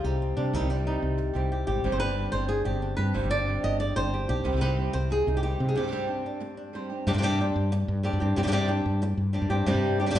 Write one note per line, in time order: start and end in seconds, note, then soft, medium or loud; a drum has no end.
0.00 0.53 C3 medium
0.00 0.69 G3 medium
0.00 0.22 C4 soft
0.04 0.32 C2 medium
0.04 0.37 G3 soft
0.04 0.37 C4 soft
0.04 0.36 D#4 medium
0.04 0.35 G4 soft
0.22 0.73 C4 soft
0.37 0.51 C3 medium
0.37 0.54 G3 soft
0.37 0.53 C4 soft
0.37 0.54 D4 medium
0.37 0.52 G4 soft
0.53 0.60 C2 medium
0.53 0.69 C3 medium
0.53 1.84 C3 medium
0.53 0.69 D#3 medium
0.53 0.70 G3 medium
0.53 0.69 C4 medium
0.53 0.70 D#4 medium
0.53 0.68 G4 medium
0.61 0.96 C2 medium
0.69 2.00 G3 medium
0.69 0.86 G3 soft
0.69 0.86 C4 soft
0.69 0.86 D4 medium
0.69 0.85 G4 soft
0.86 1.17 D#3 soft
0.86 1.17 G3 soft
0.86 1.17 C4 soft
0.86 1.68 D#4 medium
0.86 1.17 G4 soft
1.02 1.30 C2 medium
1.18 muted nylon-string guitar stroke soft
1.33 1.63 C2 medium
1.33 1.67 G3 soft
1.33 2.03 C4 soft
1.33 1.67 C4 soft
1.33 1.66 G4 soft
1.33 1.51 G4 soft
1.52 1.67 G4 soft
1.67 1.82 G#1 medium
1.67 1.84 G3 soft
1.67 1.84 C4 soft
1.67 1.92 G4 medium
1.67 1.83 G4 soft
1.84 1.91 G1 medium
1.84 3.13 G2 medium
1.84 2.00 C3 medium
1.84 2.00 G3 medium
1.84 2.00 C4 medium
1.84 2.01 D4 medium
1.84 1.99 G4 medium
1.92 2.27 G1 medium
1.92 1.99 C5 medium
2.00 3.30 G3 medium
2.00 2.16 C4 soft
2.00 2.17 D4 soft
2.00 2.16 G4 soft
2.00 2.31 B4 medium
2.16 2.32 G3 soft
2.16 2.32 C4 soft
2.16 2.33 D4 soft
2.16 2.32 G4 soft
2.32 2.61 G1 medium
2.32 2.48 C4 soft
2.32 2.48 D4 soft
2.32 2.48 G4 soft
2.32 2.48 C5 medium
2.48 2.65 G#4 medium
2.48 muted nylon-string guitar stroke medium
2.65 2.94 G1 medium
2.65 2.98 C4 soft
2.65 2.97 D4 soft
2.65 2.96 G4 soft
2.65 2.96 G4 medium
2.82 4.13 D4 soft
2.97 3.12 G2 medium
2.97 3.14 C4 soft
2.97 3.14 D4 soft
2.97 3.13 G4 soft
2.97 3.30 B4 medium
3.14 3.22 G1 medium
3.14 4.45 G2 medium
3.14 3.30 C3 medium
3.14 3.30 G3 medium
3.14 3.30 C4 medium
3.14 3.31 D4 medium
3.14 3.30 G4 medium
3.24 3.58 G1 medium
3.30 4.62 C4 medium
3.30 3.46 C4 soft
3.30 3.46 D4 soft
3.30 3.46 G4 soft
3.30 3.63 D5 loud
3.46 3.62 G3 soft
3.46 3.63 C4 soft
3.46 3.63 D4 soft
3.46 3.61 G4 medium
3.63 3.92 G1 medium
3.63 3.79 C4 soft
3.63 3.79 D4 soft
3.63 3.79 G4 soft
3.63 3.79 D#5 medium
3.79 3.96 D5 medium
3.79 muted nylon-string guitar stroke medium
3.96 4.24 G1 medium
3.96 4.29 C4 soft
3.96 4.28 D4 soft
3.96 4.27 G4 soft
3.96 4.29 C5 medium
4.14 4.29 G4 soft
4.28 4.43 B1 medium
4.28 4.45 C4 soft
4.28 4.45 D4 soft
4.28 4.44 G4 soft
4.28 4.93 G4 medium
4.44 4.52 C2 medium
4.44 4.60 C3 medium
4.44 5.76 C3 medium
4.44 4.51 D#3 medium
4.44 4.51 G3 medium
4.44 4.51 C4 medium
4.44 4.52 G4 medium
4.52 4.89 C2 medium
4.52 4.55 D#3 soft
4.52 4.56 G3 soft
4.52 4.56 C4 soft
4.52 4.57 G4 soft
4.56 4.60 D#3 soft
4.56 4.60 G3 medium
4.56 4.61 C4 medium
4.56 4.61 G4 medium
4.61 4.77 C3 medium
4.61 4.77 D#3 medium
4.61 4.77 G3 medium
4.61 4.77 C4 medium
4.61 5.93 C4 medium
4.61 4.76 G4 medium
4.61 5.10 B4 medium
4.77 5.09 G3 soft
4.77 5.10 C4 soft
4.77 5.09 G4 soft
4.93 5.22 C2 medium
4.93 5.35 C5 medium
5.10 5.36 G#4 medium
5.10 muted nylon-string guitar stroke soft
5.27 5.55 C2 medium
5.27 5.74 D#4 soft
5.37 5.42 G4 medium
5.42 5.58 D#3 soft
5.42 5.59 G3 soft
5.42 5.59 C4 soft
5.42 5.76 G4 medium
5.42 5.58 G4 soft
5.59 5.74 C3 medium
5.59 5.74 G3 soft
5.59 5.75 C4 soft
5.59 5.75 G4 soft
5.69 5.76 G#4 medium
5.75 8.37 G2 medium
5.75 5.91 C3 medium
5.75 5.78 G3 medium
5.75 5.82 G3 soft
5.75 5.78 C4 medium
5.75 5.82 C4 soft
5.75 5.79 D4 medium
5.75 5.79 G4 medium
5.75 6.75 G4 medium
5.79 5.86 G3 soft
5.79 5.83 D4 soft
5.79 5.83 G4 soft
5.84 5.91 G3 medium
5.84 5.87 C4 soft
5.84 5.87 D4 soft
5.84 5.88 G4 medium
5.88 5.91 C4 soft
5.88 5.92 D4 medium
5.88 5.92 G4 medium
5.92 6.08 C3 medium
5.92 6.08 G3 medium
5.92 6.08 C4 medium
5.92 7.05 C4 medium
5.92 6.08 D4 medium
5.92 6.06 G4 medium
6.07 6.40 C4 soft
6.07 6.40 D4 soft
6.07 6.40 G4 soft
6.26 6.56 D4 soft
6.40 muted nylon-string guitar stroke medium
6.57 7.07 D4 soft
6.73 6.89 G3 soft
6.73 6.89 C4 soft
6.73 6.90 D4 soft
6.73 6.89 G4 soft
6.73 7.05 C5 soft
6.90 7.07 C4 soft
6.90 7.06 D4 soft
6.90 7.05 G4 soft
7.07 7.13 G2 medium
7.07 7.21 C3 medium
7.07 7.12 G3 medium
7.07 7.13 C4 medium
7.07 7.13 D4 loud
7.07 7.13 G4 medium
7.13 7.49 G2 medium
7.13 7.17 G3 medium
7.13 7.17 C4 medium
7.13 7.17 D4 medium
7.13 7.18 G4 medium
7.18 7.22 G3 medium
7.18 7.22 C4 medium
7.18 7.22 D4 medium
7.18 7.23 G4 medium
7.22 7.38 C3 medium
7.22 7.39 G3 medium
7.22 7.39 C4 medium
7.22 7.38 D4 medium
7.22 7.39 G4 medium
7.41 7.71 C4 soft
7.41 7.71 D4 medium
7.41 7.72 G4 medium
7.56 7.83 G2 medium
7.72 muted nylon-string guitar stroke medium
7.88 8.09 G2 medium
8.03 8.19 G3 medium
8.03 8.20 C4 medium
8.03 8.20 D4 medium
8.03 8.19 G4 medium
8.13 8.20 G2 medium
8.20 8.35 G2 medium
8.20 8.36 C4 soft
8.20 8.36 D4 soft
8.20 8.36 G4 medium
8.36 8.44 G2 medium
8.36 8.51 C3 medium
8.36 8.39 G3 medium
8.36 8.39 C4 medium
8.36 8.39 D4 medium
8.36 8.40 G4 medium
8.43 8.80 G2 medium
8.43 8.46 G3 medium
8.43 8.46 C4 medium
8.43 8.47 D4 medium
8.43 8.47 G4 medium
8.47 8.51 G3 medium
8.47 8.52 C4 medium
8.47 8.52 D4 medium
8.47 8.52 G4 medium
8.52 8.68 C3 medium
8.52 8.68 G3 medium
8.52 8.68 C4 medium
8.52 8.68 D4 medium
8.52 8.67 G4 loud
8.68 9.01 C4 soft
8.68 9.01 D4 medium
8.68 9.01 G4 medium
8.86 9.14 G2 medium
9.02 muted nylon-string guitar stroke medium
9.17 9.39 G2 medium
9.33 9.49 G3 medium
9.33 9.49 C4 medium
9.33 9.50 D4 medium
9.33 9.49 G4 medium
9.42 9.49 G2 medium
9.50 9.64 G2 medium
9.50 9.66 C4 soft
9.50 9.66 D4 soft
9.50 9.66 G4 medium
9.66 9.74 G2 loud
9.66 9.98 C3 medium
9.66 9.99 C3 medium
9.66 9.99 G3 medium
9.66 9.99 C4 loud
9.66 9.99 C4 medium
9.66 9.99 D4 medium
9.66 9.98 G4 loud
9.66 9.97 G4 medium
9.74 10.10 G2 medium
9.98 10.19 C4 soft
9.98 10.05 C4 soft
9.98 10.19 D4 soft
9.98 10.06 D4 medium
9.98 10.19 G4 medium
9.98 10.06 G4 medium
10.06 10.09 G3 medium
10.06 10.10 C4 medium
10.06 10.10 D4 medium
10.06 10.10 G4 medium
10.10 10.19 G2 medium
10.10 10.14 G3 medium
10.10 10.14 C4 medium
10.10 10.15 D4 medium
10.10 10.15 G4 medium
10.15 10.19 C3 medium
10.15 10.19 G3 loud
10.15 10.19 C4 loud
10.15 10.19 D4 loud